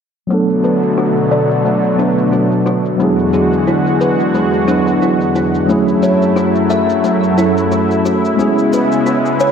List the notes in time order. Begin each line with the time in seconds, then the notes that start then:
0.27 B2 D3 F#3 A3 B3, cabasa
0.32 D4 A4
0.50 cabasa
0.64 B4, cabasa
0.83 cabasa
0.98 F#4, cabasa
1.17 cabasa
1.31 D5, cabasa
1.50 cabasa
1.65 A3, cabasa
1.84 cabasa
1.95 F#3 B3
1.99 D4 B4, cabasa
2.18 cabasa
2.32 F#4, cabasa
2.52 cabasa
2.66 F#4, cabasa
2.85 cabasa
2.96 E2 D3 F#3 G#3 B3 D4 F#4, cabasa
3.02 E4 G#4
3.19 cabasa
3.33 G#4, cabasa
3.53 cabasa
3.67 E4, cabasa
3.86 cabasa
4.01 B4, cabasa
4.20 cabasa
4.35 G#3, cabasa
4.54 cabasa
4.65 F#3 B3 D4, cabasa
4.70 E4 B4
4.87 cabasa
5.02 E4, cabasa
5.21 cabasa
5.35 E4, cabasa
5.55 cabasa
5.66 F#2 F#3 A3 C#4 E4, cabasa
5.71 E4 G#4
5.88 cabasa
6.03 C#5, cabasa
6.22 cabasa
6.36 F#4, cabasa
6.56 cabasa
6.70 E5, cabasa
6.90 cabasa
7.04 A3, cabasa
7.24 cabasa
7.34 F#3 A3 C#4 E4, cabasa
7.39 E4 A4
7.58 cabasa
7.72 F#4, cabasa
7.91 cabasa
8.05 F#4, cabasa
8.25 cabasa
8.35 G#3 B3 C#4
8.39 C#3 G#3 E4 G#4, cabasa
8.58 cabasa
8.73 B4, cabasa
8.92 cabasa
9.06 E4, cabasa
9.26 cabasa
9.40 C#5, cabasa